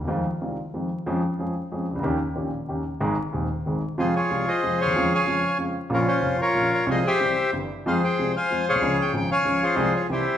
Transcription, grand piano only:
0.01 D#2 E2
0.07 F2 D#3 F3 G#3 C4 F4
0.41 C2 C3 D#3 G#3 C4 F4
0.74 F2 D#3 F3 G#3 C4 F4
1.06 F2 F3 G#3 C#4 G#4
1.39 F2 F3 G#3 C#4 G#4
1.72 F2 F3 G#3 C#4 G#4
1.91 C2
1.96 C#2 D2
2.03 D#2 D#3 A#3 C#4 G4
2.36 A#1 A#2 D#3 A#3 C#4 G4
2.68 D#2 D#3 A#3 C#4 G4
3.00 G#1 G#2 D#3 G#3 C4 G#4
3.32 D#1 D#2 D#3 G#3 C4 G#4
3.66 G#1 G#2 D#3 G#3 C4 G#4
3.98 F2 C3 F3 G#3 F4
4.30 C2 C3 F3 G#3 F4
4.63 F2 C3 F3 G#3 F4
4.84 D2 D#2
4.91 E2
4.95 F2 C#3 F3 G#3 F4
5.26 F2 C#3 F3 G#3 F4
5.58 F2 C#3 F3 G#3 F4
5.89 A#1 A#2 C#3 F3 A#3 F4
6.21 F1 F2 C#3 F3 A#3 F4
6.55 A#1 A#2 C#3 F3 A#3 F4
6.86 C2 C3 F3 G#3 F4
7.20 C2 C3 E3 G3 C4 G4
7.52 G1 G2 E3 G3 C4 G4
7.86 F2 F3 G#3 C4 G#4
8.19 C2 C3 F3 G#3 C4 G#4
8.51 F2 F3 G#3 C4 G#4
8.70 A#1
8.75 B1
8.79 C2 C#2 C#3 F3 G#3 C#4 G#4
9.13 G#1 G#2 F3 G#3 C#4 G#4
9.44 C#2 C#3 F3 G#3 C#4 G#4
9.76 C2 C3 F3 G#3 C4 G#4
10.09 C2 C3 E3 A#3 C4 G4

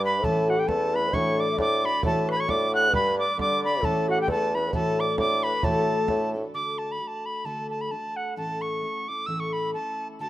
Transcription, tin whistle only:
0.05 B5
0.24 A5
0.50 F#5
0.59 G5
0.68 A5
0.96 B5
1.14 C#6
1.40 D6
1.61 D6
1.85 B5
2.06 A5
2.31 B5
2.40 C#6
2.50 D6
2.75 F#6
2.95 B5
3.19 D6
3.41 D6
3.65 B5
3.85 A5
4.10 F#5
4.22 G5
4.31 A5
4.55 B5
4.75 A5
5.00 D6
5.19 D6
5.43 B5
5.64 A5
6.54 D6
6.78 A5
6.92 B5
7.07 A5
7.26 B5
7.45 A5
7.70 A5
7.81 B5
7.91 A5
8.16 F#5
8.37 A5
8.61 C#6
9.08 D6
9.26 E6
9.40 C#6
9.53 B5
9.74 A5
10.21 A5

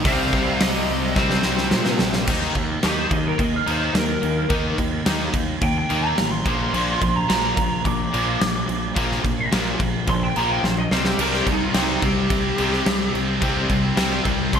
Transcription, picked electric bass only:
0.05 C2
0.33 C2
0.62 C2
0.90 C2
1.16 C2
1.45 C2
1.73 A#2
2.01 A#1
2.28 D#2
2.55 D#2
2.84 D#2
3.11 D#2
3.39 D#2
3.67 D#2
3.94 D#2
4.23 D#2
4.50 D#2
4.79 D#2
5.07 D#2
5.34 D#2
5.62 D#2
5.91 D#2
6.19 A1
6.46 A#1
6.73 A#1
7.02 A#1
7.30 A#1
7.57 A#1
7.86 A#1
8.14 A#1
8.41 A#1
8.68 A#1
8.97 A#1
9.24 A#1
9.53 A#1
9.80 A#1
10.08 A#1
10.36 A#1
10.63 A#1
10.91 C2
11.18 C2
11.47 C2
11.75 C2
12.03 C2
12.30 C2
12.60 C2
12.87 C2
13.14 C2
13.42 C2
13.70 C2
13.97 C2
14.26 C2
14.53 C2

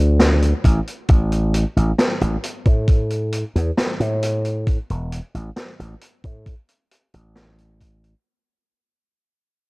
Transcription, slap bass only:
Already playing: D2
0.64 A1
1.09 A1
1.76 A1
2.21 A1
2.66 A2
3.56 E2
4.00 A2
4.90 E1
5.34 A1
5.79 A1
6.24 A2
7.14 A1

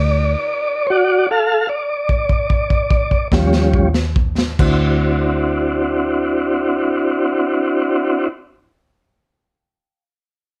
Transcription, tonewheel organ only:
Already playing: D5
0.87 F#4 C#5
0.92 D5
1.31 A4 F5
1.69 D5
3.34 F3 G3 C#4
4.59 C4 D4 E4 F#4

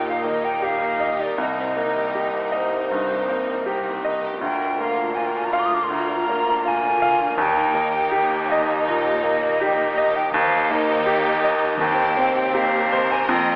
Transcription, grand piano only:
Already playing: D#2 A#2 A#3 G4 D#5
0.24 A#3
0.62 G4
1.00 D#5
1.38 C2
1.77 A#3
2.15 G4
2.52 D#5
2.91 G2
3.29 A#3
3.66 G4
4.04 D#5
4.41 D2
4.80 A#3
5.17 F4
5.53 F5
5.90 D2
6.29 A#3
6.65 F4
7.02 F5
7.38 D#2
7.74 A#3
8.12 G4
8.52 D#5
8.88 A#2
9.24 A#3
9.61 G4
9.98 D#5
10.34 D#2
10.70 A#3
11.06 G4
11.44 D#5
11.81 D#2
12.17 C4
12.54 G4
12.92 C5
13.29 F2

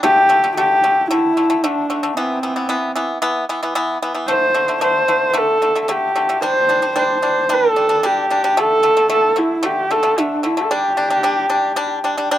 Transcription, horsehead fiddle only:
0.04 G4
0.58 G4
1.12 E4
1.65 D4
2.18 C4
4.28 C5
4.84 C5
5.30 C5
5.38 A4
5.82 A4
5.92 G4
6.45 C5
6.99 C5
7.55 A4
8.06 G4
8.59 A4
9.12 A4
9.39 E4
9.65 G4
9.92 A4
10.20 D4
10.46 E4
10.63 A4
10.71 G4

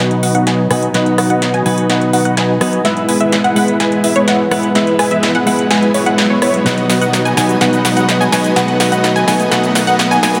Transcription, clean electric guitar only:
Already playing: B2 F#3 B3 D#4 B4
0.70 B2 F#3 B3 D#4 B4
0.93 B2 F#3 B3 D#4 B4
1.65 B2 F#3 B3 D#4 B4
2.60 F#3 B3 D#4 B4
2.84 G#3 B3 E4 B4
3.55 G#3 B3 E4 B4
4.51 G#3 B3 E4 B4
4.74 G#3 B3 E4 B4
5.45 G#3 B3 E4 B4
6.64 B2 F#3 B3 D#4 B4
7.36 B2 F#3 B3 D#4 B4
7.60 B2 F#3 B3 D#4 B4
8.31 B2 F#3 B3 D#4 B4
8.55 B2 F#3 B3 D#4 B4
9.26 B2 F#3 B3 D#4 B4
9.50 B2 F#3 B3 D#4 B4
10.22 B2 F#3 B3 D#4 B4

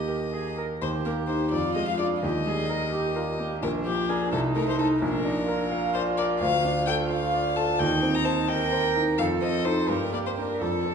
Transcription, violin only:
Already playing: D#5
0.82 C5
1.05 A#4
1.28 C5
1.51 D5
1.75 D#5
1.88 F5
1.99 D5
2.23 D#5
3.63 A#4
3.86 G4
4.09 G#4
4.32 A4
4.55 A#4
4.68 C5
4.79 A4
5.02 A#4
5.94 C5
6.17 D5
6.40 F5
6.87 G5
7.10 F5
7.56 A5
7.79 G5
8.15 A#5
8.25 A5
8.48 G5
9.18 F5
9.42 D#5
9.65 C5
9.89 A#4
10.13 D5
10.26 C5
10.38 A#4
10.61 A4

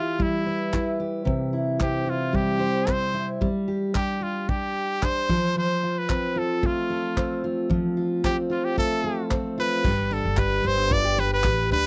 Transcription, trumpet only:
Already playing: F4
0.22 E4
1.83 G4
2.10 F4
2.36 G4
2.91 C5
3.95 G4
4.23 F4
4.49 G4
5.04 C5
5.58 C5
5.98 B4
6.38 A4
6.66 F4
8.25 G4
8.51 F4
8.65 G4
8.78 A4
9.60 B4
10.13 A4
10.39 B4
10.67 C5
10.93 D5
11.20 B4
11.34 B4
11.72 B4

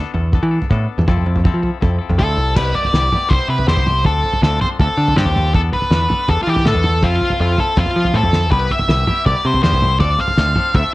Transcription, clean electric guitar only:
Already playing: B3 D4 A4
0.14 D4 A4
0.32 B3 D4 A4
0.51 D4 A4
0.69 B3 D4 A4
1.07 F3 C4 E4 A4
1.44 F3 C4 E4 A4
1.62 C4 E4 A4
1.80 F3 C4 E4 A4
1.99 C4 E4 A4
2.18 F3 C4 E4 A4
2.55 G3 B3 E4 G4
2.75 B3 E4 G4
2.93 G3 B3 E4 G4
3.12 G3 B3 E4 G4
3.31 G3 B3 E4 G4
3.48 B3 E4 G4
3.67 G3 B3 E4 G4
3.86 B3 E4 G4
4.04 F3 C4 D4 A4
4.23 C4 D4 A4
4.41 F3 C4 D4 A4
4.60 F3 C4 D4 A4
4.79 F3 C4 D4 A4
4.97 C4 D4 A4
5.15 F3 C4 D4 A4
5.35 C4 D4 A4
5.54 B3 D4 A4
5.72 D4 A4
5.90 B3 D4 A4
6.09 B3 D4 A4
6.27 B3 D4 A4
6.46 D4 A4
6.65 B3 D4 A4
6.83 D4 A4
7.02 F3 C4 E4 A4
7.21 C4 E4 A4
7.40 F3 C4 E4 A4
7.57 F3 C4 E4 A4
7.76 F3 C4 E4 A4
7.94 C4 E4 A4
8.14 F3 C4 E4 A4
8.32 C4 E4 A4
8.50 G3 B3 E4 G4
8.69 B3 E4 G4
8.88 G3 B3 E4 G4
9.07 G3 B3 E4 G4
9.26 G3 B3 E4 G4
9.43 B3 E4 G4
9.61 G3 B3 E4 G4
9.80 B3 E4 G4
9.98 F3 C4 D4 A4
10.17 C4 D4 A4
10.35 F3 C4 D4 A4
10.55 F3 C4 D4 A4
10.74 F3 C4 D4 A4

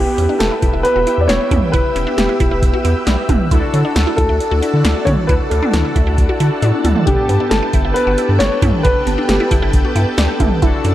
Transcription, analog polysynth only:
Already playing: B3 E4 G4 B4
3.51 D4 E4 F#4 A4
7.07 B3 D4 G4 A4
10.62 D4 E4 F#4 A4

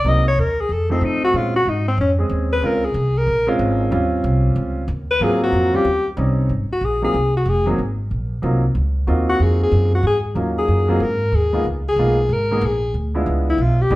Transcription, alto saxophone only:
0.08 D#5
0.28 C#5
0.39 A#4
0.61 G#4
0.72 A4
0.91 C4
1.05 D#4
1.24 F#4
1.36 F4
1.56 F#4
1.69 D#4
1.88 C4
2.01 C#4
2.53 B4
2.66 A#4
2.85 G#4
3.18 A#4
5.11 B4
5.24 G#4
5.44 F#4
5.76 G4
6.72 F#4
6.85 G#4
7.04 G#4
7.37 F#4
7.49 G#4
9.29 F#4
9.43 G#4
9.63 G#4
9.95 F#4
10.07 G#4
10.58 G#4
11.03 A#4
11.36 G#4
11.89 G#4
12.33 A#4
12.66 G#4
13.50 E4
13.62 F4
13.81 G4

